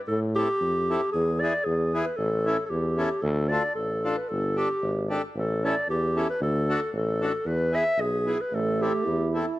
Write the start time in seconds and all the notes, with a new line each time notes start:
0.08 A2 A4
0.36 C4 E4 G4 A4
0.61 F2
0.90 C4 E4 A4
1.12 E2 G#4
1.40 B3 E4 G#4 D5
1.65 E2 G#4
1.94 B3 E4 G#4
2.05 B4
2.17 A1 A4
2.46 C#4 E4 A4
2.66 G4 A4
2.70 E2
2.97 C#4 E4 A4
3.22 D2 A4
3.48 D4 F4 A4 D5
3.75 A1 A4
4.04 D4 F4 A4
4.17 B4
4.29 G1 A4
4.56 D4 G4 A4
4.83 G#1
5.10 D4 G4 A4
5.36 A1 A4
5.64 C#4 E4 A4 D5
5.89 E2 G4
6.16 C#4 E4 A4
6.30 B4
6.41 D2 A4
6.69 D4 F#4 A4
6.93 A1 A4
7.21 D4 F#4 A4
7.46 E2 B4
7.72 B3 E4 G#4 E5
7.98 B1 G#4
8.26 B3 E4 G#4
8.41 B4
8.52 A1 A3 A4
8.81 C4 E4 G4 A4
9.05 E2 E4
9.34 C4 E4 A4